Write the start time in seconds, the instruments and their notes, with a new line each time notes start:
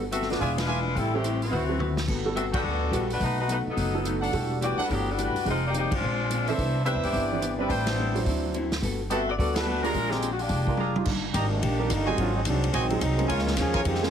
Already playing: upright bass G1
0.11 hollow-body jazz guitar G3 B3 F#4 A4, saxophone section C4 F#4 A4 E5, closed hi-hat
0.22 snare
0.30 grand piano F3 D4 E4 B4, saxophone section B3 F#4 A4 D5, snare, open hi-hat
0.39 upright bass E1, hollow-body jazz guitar E3 G#3 D4 F4, saxophone section B3 F4 G#4 D5, trumpet section F4 D5 E5 G#5, kick, open hi-hat
0.57 saxophone section G#3 D4 F4 B4, snare, ride
0.67 hollow-body jazz guitar E3 G#3 D4 F4, trumpet section F4 D5 E5 G#5
0.96 upright bass A1, hollow-body jazz guitar A2 G3 C4 E4, saxophone section G3 C4 E4 A4, kick, open hi-hat
1.14 saxophone section E3 A3 C4 G4, grand piano G3 C4 E4 A4
1.22 hollow-body jazz guitar A2 G3 C4 E4, closed hi-hat
1.42 saxophone section E3 A3 C4 F#4, open hi-hat
1.50 upright bass D2, hollow-body jazz guitar D3 C4 F#4 B4, trumpet section E4 B4 C5 F#5, mid tom
1.69 grand piano F#3 C4 E4 B4
1.78 hollow-body jazz guitar D3 C4 F#4 B4, mid tom
1.97 snare
2.07 upright bass G1, hollow-body jazz guitar G3 B3 F#4 A4, kick, crash
2.26 grand piano G3 B3 F#4 A4
2.35 hollow-body jazz guitar G3 B3 F#4 A4, saxophone section C4 F#4 A4 E5, closed hi-hat
2.52 saxophone section B3 F#4 A4 D5, trumpet section F#4 A4 B4 G5, kick, ride
2.63 upright bass D2, hollow-body jazz guitar G3 B3 F#4 A4
2.91 upright bass A#1, hollow-body jazz guitar G3 B3 F#4 A4, grand piano G3 B3 F#4 B4, closed hi-hat
3.10 saxophone section A3 D4 F#4 B4, open hi-hat
3.20 upright bass B1, hollow-body jazz guitar B2 F#3 A3 D#4, saxophone section A3 D#4 F#4 B4, kick, open hi-hat
3.41 saxophone section A3 D#4 F#4 B4
3.48 hollow-body jazz guitar B2 F#3 A3 D#4, saxophone section F#4, closed hi-hat
3.52 saxophone section A3 D#4 B4
3.66 muted upright bass stroke
3.71 saxophone section F#3 B3 D#4 A4
3.77 upright bass F#1, hollow-body jazz guitar B2 F#3 A3 D#4, kick, open hi-hat
3.95 grand piano F#3 B3 D#4 A4
4.05 hollow-body jazz guitar B2 F#3 A3 D#4, closed hi-hat
4.21 trumpet section D4 A4 F#5, open hi-hat
4.32 upright bass E1, hollow-body jazz guitar E3 A3 D4 G4, grand piano G3 D4 F#4 A4, kick, open hi-hat
4.61 hollow-body jazz guitar E3 A3 D4 G4, saxophone section B3 F#4 G4 D5, closed hi-hat
4.77 saxophone section G3 D4 F#4 B4, trumpet section D4 G4 A4 F#5, muted upright bass stroke, open hi-hat
4.88 upright bass G1, hollow-body jazz guitar E3 A3 D4 G4, kick, open hi-hat
4.92 saxophone section D3 F#3 B3 G4
5.11 saxophone section G3 D4 F#4 A4
5.17 hollow-body jazz guitar E3 A3 D4 G4, closed hi-hat
5.22 saxophone section G3 D4 F#4 B4
5.34 muted upright bass stroke, open hi-hat
5.45 upright bass F1, hollow-body jazz guitar F2 D#3 G#3 C4, grand piano F3 C4 D#4 G#4, kick, open hi-hat
5.50 saxophone section G#3 D#4 F4 C5
5.67 saxophone section A#3 D#4 G4 D5
5.73 hollow-body jazz guitar F2 D#3 G#3 C4, closed hi-hat
5.78 saxophone section A#3 D#4 G4 D5
5.91 upright bass G#1, saxophone section G#3 D4 F4 C5, kick, ride
6.01 upright bass A#1, hollow-body jazz guitar A#2 G#3 C4 D4
6.30 hollow-body jazz guitar A#2 G#3 C4 D4, closed hi-hat
6.46 grand piano E3 C4 D4 A4, trumpet section D4 B4 C5 E5, open hi-hat
6.58 upright bass C2, hollow-body jazz guitar C3 E3 B3 D4, kick, open hi-hat
6.84 hollow-body jazz guitar C3 E3 B3 D4, trumpet section D4 B4 C5 E5, saxophone section D4 G4 B4 E5, closed hi-hat
6.95 upright bass E2
7.03 upright bass G2, saxophone section B3 E4 G4 D5, open hi-hat
7.13 upright bass G1, hollow-body jazz guitar C3 E3 B3 D4, kick, open hi-hat
7.32 grand piano E3 C4 D4 B4
7.40 hollow-body jazz guitar C3 E3 B3 D4, closed hi-hat
7.59 grand piano G3 C4 D4 B4, saxophone section G3 C4 E4 B4
7.67 upright bass A1, hollow-body jazz guitar A2 G3 C4 D4, trumpet section D4 B4 C5 G5, kick, open hi-hat
7.87 saxophone section G3 B3 C5, snare, ride
7.91 saxophone section E4
7.99 hollow-body jazz guitar A2 G3 C4 D4
8.15 grand piano F#3 D4 E4 C5, open hi-hat
8.26 upright bass D2, hollow-body jazz guitar D3 F#3 C4 E4, kick, open hi-hat
8.54 hollow-body jazz guitar D3 F#3 C4 E4, closed hi-hat
8.72 snare, open hi-hat
8.82 upright bass G1, hollow-body jazz guitar G3 B3 F#4 A4, kick, open hi-hat
9.09 hollow-body jazz guitar G3 B3 F#4 A4, saxophone section C4 F#4 A4 D#5 E5, trumpet section G4 B4 F#5 A5, closed hi-hat
9.29 saxophone section B3 F#4 A4 D5
9.38 upright bass D2, hollow-body jazz guitar G3 B3 F#4 A4, saxophone section B3 F#4 A4 D5, kick, open hi-hat
9.56 grand piano G3 B3 F#4 A4, saxophone section A3 D4 F#4 B4, snare, ride
9.66 hollow-body jazz guitar G3 B3 F#4 A4
9.83 saxophone section G#3 D4 F4 A#4, grand piano G#3 D4 F4 G4, trumpet section G#4 D5 F5 A#5, open hi-hat
9.94 upright bass A#1, hollow-body jazz guitar A#2 F3 G#3 D4, kick, open hi-hat
10.10 saxophone section D#3 G#3 C4 G4, snare
10.22 hollow-body jazz guitar A#2 F3 G#3 D4, closed hi-hat
10.33 saxophone section F#4
10.39 saxophone section F3 A#3 D4 G4, open hi-hat
10.48 upright bass F1, hollow-body jazz guitar A#2 F3 G#3 D4, kick, open hi-hat
10.67 grand piano G#3 D4 F4 A#4, kick
10.77 hollow-body jazz guitar A#2 F3 G#3 D4, trumpet section G#4 D5 F5 A#5, high tom
10.96 grand piano G3 D4 D#4 F4, high tom
11.05 upright bass G1, hollow-body jazz guitar D#3 G3 A#3 D4, kick, crash
11.33 upright bass G#1, hollow-body jazz guitar D#3 G3 A#3 D4, trombone section D#3 G3 A#3 D4, trumpet section G4 D5 D#5 A#5, kick, hi-hat pedal, ride
11.62 upright bass A#1, hollow-body jazz guitar D#3 G3 A#3 D4, trombone section D#3 A#3 D4 G4, kick, ride
11.79 grand piano G3 A#3 D4 D#4 A#4
11.89 upright bass G1, trombone section D3 G3 A#3 D#4, hollow-body jazz guitar D#3 G3 A#3 D4, kick, hi-hat pedal, ride
12.06 grand piano F#3 G#3 C4 D#4 G#4, trumpet section F#4 C5 D#5 G#5
12.18 upright bass G#1, hollow-body jazz guitar G#2 F#3 C4 D#4, trombone section F#3 A#3 D4 F4, kick, ride
12.35 trombone section F#3 G#3 C4 D#4
12.44 upright bass C2, hollow-body jazz guitar G#2 F#3 C4 D#4, trombone section F#3 G#3 C4 D4, kick, hi-hat pedal, ride
12.64 ride
12.73 upright bass A#1, hollow-body jazz guitar G#2 F#3 C4 D#4, trombone section D#3 F#3 G#3 C4, trumpet section F#4 C5 D#5 G#5, kick, ride
12.90 grand piano F#3 G#3 C4 D#4 G#4, ride
13.01 upright bass C2, hollow-body jazz guitar G#2 F#3 C4 D#4, trombone section F#3 G#3 C4 D#4, kick, hi-hat pedal, ride
13.18 grand piano F3 G#3 A#3 C#4 G#4, ride
13.28 upright bass C#2, hollow-body jazz guitar C#3 G#3 A#3, trombone section G#3 A#3 C#4 F4, trumpet section F4 A#4 C#5 G#5, kick, ride
13.32 hollow-body jazz guitar F4
13.39 snare
13.47 snare
13.57 upright bass D#2, hollow-body jazz guitar C#3 G#3 A#3 F4, trombone section F3 A#3 C#4 G#4, kick, snare, hi-hat pedal, ride
13.74 trumpet section F4 A#4 C#5 G#5, kick, ride
13.85 upright bass F2, hollow-body jazz guitar C#3 G#3 A#3 F4, trombone section D#3 G#3 C4 G4, kick, ride
13.95 snare
14.02 grand piano F3 G#3 A#3 C#4 G#4, trombone section G#3 A#3 C#4 F4, snare